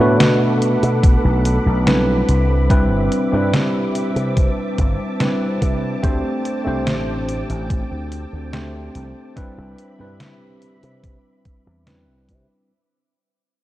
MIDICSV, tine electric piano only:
0, 0, Header, 1, 2, 480
1, 0, Start_track
1, 0, Tempo, 833333
1, 1556, Time_signature, 4, 2, 24, 8
1, 7853, End_track
2, 0, Start_track
2, 0, Title_t, "Tine electric piano"
2, 0, Program_c, 0, 4
2, 0, Control_c, 0, 64, 127
2, 0, Note_on_c, 0, 57, 73
2, 0, Note_on_c, 0, 59, 67
2, 0, Note_on_c, 0, 62, 72
2, 0, Note_on_c, 0, 66, 79
2, 0, Note_on_c, 0, 71, 90
2, 2, Note_off_c, 0, 66, 0
2, 2, Note_on_c, 0, 66, 68
2, 6, Note_off_c, 0, 71, 0
2, 6, Note_on_c, 0, 71, 83
2, 1043, Note_off_c, 0, 57, 0
2, 1045, Note_off_c, 0, 59, 0
2, 1047, Note_off_c, 0, 62, 0
2, 1050, Note_off_c, 0, 66, 0
2, 1051, Note_off_c, 0, 71, 0
2, 1072, Note_on_c, 0, 55, 74
2, 1074, Note_on_c, 0, 60, 70
2, 1077, Note_on_c, 0, 62, 66
2, 1078, Note_on_c, 0, 64, 69
2, 1081, Note_on_c, 0, 71, 83
2, 1323, Control_c, 0, 64, 0
2, 1439, Control_c, 0, 64, 127
2, 1526, Note_off_c, 0, 55, 0
2, 1527, Note_off_c, 0, 60, 0
2, 1528, Note_off_c, 0, 62, 0
2, 1529, Note_off_c, 0, 64, 0
2, 1530, Note_off_c, 0, 71, 0
2, 1550, Note_on_c, 0, 55, 89
2, 1553, Note_on_c, 0, 60, 81
2, 1555, Note_on_c, 0, 62, 76
2, 1557, Note_on_c, 0, 64, 77
2, 1559, Note_on_c, 0, 71, 95
2, 1886, Note_off_c, 0, 55, 0
2, 1887, Note_off_c, 0, 60, 0
2, 1888, Note_off_c, 0, 62, 0
2, 1889, Note_off_c, 0, 64, 0
2, 1890, Note_off_c, 0, 71, 0
2, 1909, Note_on_c, 0, 55, 76
2, 1913, Note_on_c, 0, 60, 69
2, 1918, Note_on_c, 0, 62, 69
2, 1921, Note_on_c, 0, 64, 68
2, 1926, Note_on_c, 0, 71, 79
2, 2963, Note_off_c, 0, 55, 0
2, 2965, Note_off_c, 0, 60, 0
2, 2968, Note_off_c, 0, 62, 0
2, 2969, Note_off_c, 0, 64, 0
2, 2972, Note_off_c, 0, 71, 0
2, 2991, Note_on_c, 0, 55, 79
2, 2993, Note_on_c, 0, 60, 67
2, 2995, Note_on_c, 0, 62, 69
2, 2998, Note_on_c, 0, 64, 67
2, 2999, Note_on_c, 0, 71, 84
2, 3445, Note_off_c, 0, 55, 0
2, 3446, Note_off_c, 0, 60, 0
2, 3447, Note_off_c, 0, 62, 0
2, 3448, Note_off_c, 0, 64, 0
2, 3449, Note_off_c, 0, 71, 0
2, 3470, Note_on_c, 0, 57, 86
2, 3472, Note_on_c, 0, 60, 80
2, 3475, Note_on_c, 0, 62, 78
2, 3476, Note_on_c, 0, 67, 77
2, 3479, Note_on_c, 0, 72, 94
2, 3484, Control_c, 0, 64, 0
2, 3571, Control_c, 0, 64, 127
2, 3806, Note_off_c, 0, 57, 0
2, 3807, Note_off_c, 0, 60, 0
2, 3808, Note_off_c, 0, 62, 0
2, 3809, Note_off_c, 0, 67, 0
2, 3810, Note_off_c, 0, 72, 0
2, 3828, Note_on_c, 0, 57, 72
2, 3832, Note_on_c, 0, 60, 66
2, 3836, Note_on_c, 0, 62, 65
2, 3841, Note_on_c, 0, 67, 66
2, 3845, Note_on_c, 0, 72, 81
2, 4883, Note_off_c, 0, 57, 0
2, 4884, Note_off_c, 0, 60, 0
2, 4887, Note_off_c, 0, 62, 0
2, 4889, Note_off_c, 0, 67, 0
2, 4891, Note_off_c, 0, 72, 0
2, 4911, Note_on_c, 0, 57, 76
2, 4914, Note_on_c, 0, 60, 69
2, 4916, Note_on_c, 0, 62, 64
2, 4918, Note_on_c, 0, 67, 67
2, 4919, Note_on_c, 0, 72, 78
2, 5365, Note_off_c, 0, 57, 0
2, 5366, Note_off_c, 0, 60, 0
2, 5368, Note_off_c, 0, 62, 0
2, 5369, Note_off_c, 0, 67, 0
2, 5369, Note_off_c, 0, 72, 0
2, 5391, Note_on_c, 0, 55, 85
2, 5393, Note_on_c, 0, 60, 80
2, 5395, Note_on_c, 0, 62, 78
2, 5397, Note_on_c, 0, 64, 78
2, 5399, Note_on_c, 0, 71, 93
2, 5403, Control_c, 0, 64, 0
2, 5508, Control_c, 0, 64, 127
2, 5726, Note_off_c, 0, 55, 0
2, 5727, Note_off_c, 0, 60, 0
2, 5728, Note_off_c, 0, 62, 0
2, 5729, Note_off_c, 0, 64, 0
2, 5730, Note_off_c, 0, 71, 0
2, 5749, Note_on_c, 0, 55, 71
2, 5753, Note_on_c, 0, 60, 69
2, 5758, Note_on_c, 0, 62, 66
2, 5762, Note_on_c, 0, 64, 64
2, 5766, Note_on_c, 0, 71, 78
2, 6803, Note_off_c, 0, 55, 0
2, 6805, Note_off_c, 0, 60, 0
2, 6808, Note_off_c, 0, 62, 0
2, 6810, Note_off_c, 0, 64, 0
2, 6812, Note_off_c, 0, 71, 0
2, 6832, Note_on_c, 0, 55, 72
2, 6834, Note_on_c, 0, 60, 66
2, 6836, Note_on_c, 0, 62, 67
2, 6838, Note_on_c, 0, 64, 64
2, 6841, Note_on_c, 0, 71, 79
2, 7286, Note_off_c, 0, 55, 0
2, 7287, Note_off_c, 0, 60, 0
2, 7288, Note_off_c, 0, 62, 0
2, 7289, Note_off_c, 0, 64, 0
2, 7290, Note_off_c, 0, 71, 0
2, 7323, Control_c, 0, 64, 0
2, 7853, End_track
0, 0, End_of_file